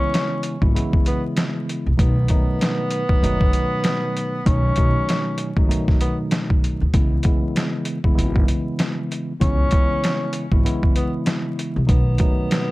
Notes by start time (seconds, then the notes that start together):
Already playing: C#3 E3 G#3 B3 C#4 E4
0.14 snare, closed hi-hat
0.43 closed hi-hat
0.62 G#1 C#3 E3 G#3 B3 E4, kick
0.75 C#3 E3 G#3 B3 E4, closed hi-hat
0.93 kick
1.06 B3, closed hi-hat
1.36 snare, closed hi-hat
1.69 closed hi-hat
1.86 C2
1.97 B1 B2 D#3 F#3 A3 B3 D#4, kick, closed hi-hat
2.28 B2 D#3 F#3 A3 D#4, kick, closed hi-hat
2.61 snare, closed hi-hat
2.91 closed hi-hat
3.09 B2 D#3 F#3 A3 D#4, kick
3.23 F#1 B2 D#3 F#3 A3 D#4, closed hi-hat
3.41 kick
3.53 closed hi-hat
3.84 snare, closed hi-hat
4.17 closed hi-hat
4.45 B1 B2 D#3 F#3 A3 C#4 D#4, kick, closed hi-hat
4.76 B1 B2 D#3 F#3 A3 D#4, kick, closed hi-hat
5.09 snare, closed hi-hat
5.38 closed hi-hat
5.57 G#1 B2 D#3 F#3 A3 D#4, kick
5.68 B2 D#3 F#3 A3 D#4, closed hi-hat
5.88 kick, snare
6.01 B3, closed hi-hat
6.31 snare, closed hi-hat
6.50 kick
6.64 closed hi-hat
6.81 D2
6.94 C#2 C#3 E3 G#3 B3 E4, kick, closed hi-hat
7.23 C#3 E3 G#3 B3 E4, kick, closed hi-hat
7.56 snare, closed hi-hat
7.85 closed hi-hat
8.04 C#3 E3 G#3 B3 E4, kick
8.14 G#1 C#3 E3 G#3 B3 E4
8.19 closed hi-hat
8.36 kick
8.48 closed hi-hat
8.79 snare, closed hi-hat
9.12 closed hi-hat
9.40 C#2 C#3 E3 G#3 B3 C#4 E4, kick, closed hi-hat
9.71 C#2 C#3 E3 G#3 B3 E4, kick, closed hi-hat
10.04 snare, closed hi-hat
10.33 closed hi-hat
10.52 G#1 C#3 E3 G#3 B3 E4, kick
10.65 C#3 E3 G#3 B3 E4, closed hi-hat
10.83 kick
10.96 B3, closed hi-hat
11.26 snare, closed hi-hat
11.59 closed hi-hat
11.76 C2
11.87 B1 B2 D#3 F#3 A3 B3 D#4, kick, closed hi-hat
12.18 B2 D#3 F#3 A3 D#4, kick, closed hi-hat
12.51 snare, closed hi-hat